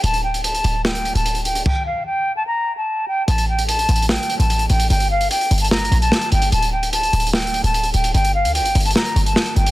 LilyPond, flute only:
\new Staff \with { instrumentName = "Flute" } { \time 4/4 \key g \dorian \tempo 4 = 148 a''8 g''8 a''4 g''8. a''8. g''8 | g''8 f''8 g''8. a''16 bes''8. a''8. g''8 | a''8 g''8 a''4 g''8. a''8. g''8 | g''8 f''8 g''8. a''16 bes''8. a''8. g''8 |
a''8 g''8 a''4 g''8. a''8. g''8 | g''8 f''8 g''8. a''16 bes''8. a''8. g''8 | }